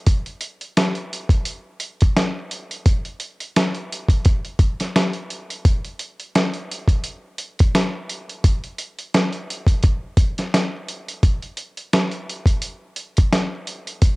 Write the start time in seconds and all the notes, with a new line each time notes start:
0.06 kick, closed hi-hat
0.26 closed hi-hat
0.41 closed hi-hat
0.61 closed hi-hat
0.77 snare, closed hi-hat
0.95 closed hi-hat
1.13 closed hi-hat
1.29 kick, closed hi-hat
1.45 closed hi-hat
1.80 closed hi-hat
2.01 kick, closed hi-hat
2.17 snare, closed hi-hat
2.51 closed hi-hat
2.71 closed hi-hat
2.86 kick, closed hi-hat
3.05 closed hi-hat
3.20 closed hi-hat
3.40 closed hi-hat
3.56 snare, closed hi-hat
3.75 closed hi-hat
3.92 closed hi-hat
4.09 kick, closed hi-hat
4.25 kick, closed hi-hat
4.45 closed hi-hat
4.59 kick, closed hi-hat
4.80 snare, closed hi-hat
4.96 snare, closed hi-hat
5.13 closed hi-hat
5.30 closed hi-hat
5.50 closed hi-hat
5.65 kick, closed hi-hat
5.85 closed hi-hat
5.99 closed hi-hat
6.20 closed hi-hat
6.35 snare, closed hi-hat
6.54 closed hi-hat
6.71 closed hi-hat
6.88 kick, closed hi-hat
7.04 closed hi-hat
7.38 closed hi-hat
7.59 kick, closed hi-hat
7.75 snare, closed hi-hat
8.09 closed hi-hat
8.29 closed hi-hat
8.44 kick, closed hi-hat
8.64 closed hi-hat
8.78 closed hi-hat
8.99 closed hi-hat
9.14 snare, closed hi-hat
9.33 closed hi-hat
9.50 closed hi-hat
9.67 kick, closed hi-hat
9.83 kick, closed hi-hat
10.17 kick, closed hi-hat
10.38 snare, closed hi-hat
10.54 snare, closed hi-hat
10.88 closed hi-hat
11.08 closed hi-hat
11.23 kick, closed hi-hat
11.42 closed hi-hat
11.57 closed hi-hat
11.77 closed hi-hat
11.93 snare, closed hi-hat
12.11 closed hi-hat
12.29 closed hi-hat
12.46 kick, closed hi-hat
12.62 closed hi-hat
12.96 closed hi-hat
13.17 kick, closed hi-hat
13.33 snare, closed hi-hat
13.67 closed hi-hat
13.87 closed hi-hat
14.02 kick, closed hi-hat